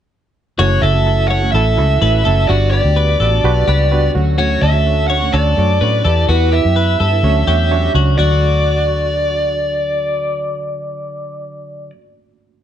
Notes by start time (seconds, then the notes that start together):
0.59 F#1 F#2 C#3 E3 A3 C#4 E4 F#4 A4 C#5
0.82 F#1 E4 F#4 A4 E5
0.94 E3 A3 C#4 F#4
1.06 E4 F#4 A4
1.28 E4 F#4 A4 C#5 F#5
1.42 E3 A3 C#4 F#4
1.52 A1 E4 F#4 A4 E5
1.77 C#2 E3 A3 C#4 E4 F#4 A4
2.01 A1 E3 A3 C#4 E4 F#4 A4 B4
2.24 F#1 E3 A3 C#4 E4 F#4 A4
2.47 G1 G3 B3 D4 F#4 G4 B4 D5
2.71 F#4 G4 B4 D5
2.83 D2 B3 D4 F#4
2.96 F#4 G4 B4
3.20 A1 F#4 G4 A4 B4
3.32 B3 D4 F#4
3.44 B1 F#4 G4 B4
3.67 C#2 G3 B3 D4 F#4 G4 B4
3.90 G3 B3 D4 F#4 G4 B4
4.14 D2 F#3 A3 C#4 D4 F#4 C#5
4.38 D3 F#3 A3 C#4 F#4 C#5
4.61 D2 D4 F#4 A4 C#5 E5
4.73 A3 C#4 F#4
4.86 D4 F#4 C#5
5.08 D4 F#4 C#5 F#5
5.20 A3 C#4 F#4
5.32 D2 D4 F#4 A4 C#5 D5
5.56 F#2 F#3 A3 C#4 D4 F#4 C#5
5.80 A2 F#3 A3 C#4 D4 F#4 B4 C#5
6.04 E2 E3 B3 E4 G4 A4 B4
6.28 E2 E3 B3 E4 F#4 G4 B4
6.52 E4 G4 B4 E5
6.64 F#2 B3 E4 G4
6.76 E4 G4 B4
7.00 G2 E4 G4 A4 B4
7.10 B3 E4 G4
7.23 D2 D3 F#3 A3 C#4 D4 F#4 C#5
7.47 E2 F#3 A3 C#4 D4 F#4 G4 C#5
7.70 F#3 A3 C#4 D4 F#4 C#5
7.94 C#2 F#3 A3 C#4 D4 F#4 C#5
8.13 D3 D4
8.18 D2 F#3 F#4 D5
8.24 A3
8.31 F#4